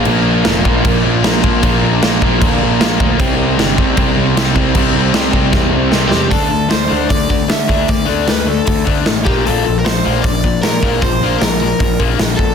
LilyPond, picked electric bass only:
\new Staff \with { instrumentName = "Picked electric bass" } { \clef bass \time 4/4 \key c \major \tempo 4 = 153 bes,,4 f,,8 bes,,8 bes,,8 bes,,8 bes,,8 bes,,8 | bes,,8 bes,,8 bes,,8 bes,,8 d,8 bes,,8 bes,,8 d,8 | c,4 g,,8 c,8 c,8 c,8 c,8 c,8 | c,8 c,8 c,8 c,8 e,8 c,8 c,8 e,8 |
\key d \mixolydian d,8 d,8 d,8 d,8 d,4 d8 d,8 | d,8 d,8 d,4 d,8 d,8 a,,8 bes,,8 | bes,,8 bes,,8 bes,,8 bes,,8 bes,,4 bes,8 bes,,8 | bes,,8 bes,,8 bes,,4 bes,,8 bes,,8 bes,,8 bes,,8 | }